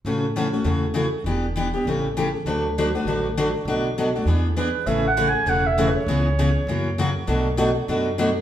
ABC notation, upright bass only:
X:1
M:4/4
L:1/8
Q:"Swing" 1/4=199
K:A
V:1 name="Upright bass" clef=bass
A,,,4 E,,4 | E,,,4 A,,,4 | D,,4 A,,,4 | B,,,4 E,,4 |
A,,,4 E,,,4 | C,,4 F,,4 | B,,,4 F,,4 |]